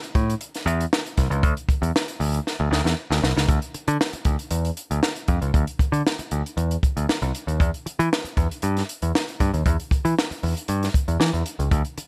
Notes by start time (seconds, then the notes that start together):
0.03 closed hi-hat
0.15 A2, kick, closed hi-hat
0.30 closed hi-hat
0.41 closed hi-hat
0.55 snare, closed hi-hat
0.66 E2, closed hi-hat
0.81 closed hi-hat
0.93 snare
1.06 closed hi-hat
1.17 C2, kick, snare, closed hi-hat
1.30 C#2, closed hi-hat
1.43 D2, kick, closed hi-hat
1.57 closed hi-hat
1.69 kick, closed hi-hat
1.82 E2, closed hi-hat
1.96 snare
2.08 closed hi-hat
2.20 D2, open hi-hat
2.34 closed hi-hat
2.47 snare
2.60 D2
2.71 D2, snare
2.84 E2, snare
3.10 D2, snare
3.22 C2, snare
3.36 C#2, snare
3.49 D2, kick, closed hi-hat
3.62 closed hi-hat
3.74 muted picked electric bass stroke, closed hi-hat
3.88 D3, closed hi-hat
4.01 snare
4.13 muted picked electric bass stroke, closed hi-hat
4.25 D2, kick, closed hi-hat
4.39 closed hi-hat
4.51 E2, closed hi-hat
4.65 closed hi-hat
4.77 closed hi-hat
4.91 D2, closed hi-hat
5.03 snare
5.16 closed hi-hat
5.28 F2, kick, closed hi-hat
5.41 C#2, closed hi-hat
5.54 D2, kick, closed hi-hat
5.67 closed hi-hat
5.79 muted picked electric bass stroke, kick, closed hi-hat
5.92 D3, closed hi-hat
6.07 snare
6.19 muted picked electric bass stroke, closed hi-hat
6.31 D2, closed hi-hat
6.46 closed hi-hat
6.57 E2, closed hi-hat
6.71 closed hi-hat
6.83 kick, closed hi-hat
6.97 D2, closed hi-hat
7.09 snare
7.22 C2, closed hi-hat
7.35 closed hi-hat
7.47 D#2, closed hi-hat
7.60 E2, kick, closed hi-hat
7.74 closed hi-hat
7.86 muted picked electric bass stroke, closed hi-hat
7.99 E3, closed hi-hat
8.13 snare
8.24 muted picked electric bass stroke, closed hi-hat
8.37 E2, kick, closed hi-hat
8.51 closed hi-hat
8.62 G2, closed hi-hat
8.77 snare, closed hi-hat
8.89 closed hi-hat
9.02 E2, closed hi-hat
9.15 snare
9.29 closed hi-hat
9.40 G2, kick, closed hi-hat
9.54 D#2, closed hi-hat
9.66 E2, kick, closed hi-hat
9.80 closed hi-hat
9.91 muted picked electric bass stroke, kick, closed hi-hat
10.05 E3, closed hi-hat
10.19 snare
10.31 muted picked electric bass stroke, closed hi-hat
10.43 E2, open hi-hat
10.57 closed hi-hat
10.68 G2, closed hi-hat
10.83 snare, closed hi-hat
10.94 kick, closed hi-hat
11.08 E2, closed hi-hat
11.20 E3, snare
11.33 E2, closed hi-hat
11.46 closed hi-hat
11.59 C#2, closed hi-hat
11.71 D2, kick, closed hi-hat
11.85 closed hi-hat
11.98 muted picked electric bass stroke, closed hi-hat